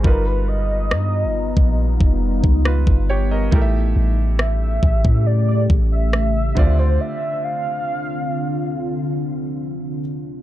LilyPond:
<<
  \new Staff \with { instrumentName = "Soft synth lead" } { \time 4/4 \key d \minor \tempo 4 = 69 ais'16 b'16 dis''2 r4. | r4 e''4 d''16 d''8 e''4 c''16 | e''8 f''2 r4. | }
  \new Staff \with { instrumentName = "Grand piano" } { \time 4/4 \key d \minor << { r2. <f' b'>8 <g' des''>16 <ais' dis''>16~ | <ais' dis''>16 r2. r8. | r1 | } \\ { <g dis' f' ais' b'>1 | <a e' g' bes' e''>2.~ <a e' g' bes' e''>8 <d c' f' d''>8~ | <d c' f' d''>2.~ <d c' f' d''>8 r8 | } >> }
  \new Staff \with { instrumentName = "Ambient pad" } { \time 4/4 \key d \minor <g b dis' f' ais''>1 | <cis a g'>2.~ <cis a g'>8 <d c' d' f'>8~ | <d c' d' f'>1 | }
  \new Staff \with { instrumentName = "808-style bass" } { \clef bass \time 4/4 \key d \minor g,,4 g,16. g,,16. ais,,8 f,,8 des,8 g,,8. | a,,8 a,,4 a,,16 a,8. a,,4 d,8 | r1 | }
  \new DrumStaff \with { instrumentName = "Drums" } \drummode { \time 4/4 bd4 ss8. bd16 r16 bd8 bd16 ss16 bd8. | bd4 ss8 bd16 bd16 r8 bd8 ss8 bd8 | r4 r4 r4 r4 | }
>>